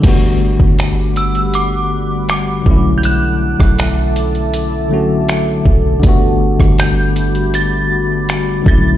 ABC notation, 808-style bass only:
X:1
M:4/4
L:1/16
Q:1/4=80
K:Glyd
V:1 name="808-style bass" clef=bass
G,,,3 G,,,8- G,,,3 B,,,2- | B,,,3 B,,,8- B,,,3 B,,,2 | G,,,3 G,,,8- G,,,3 B,,,2 |]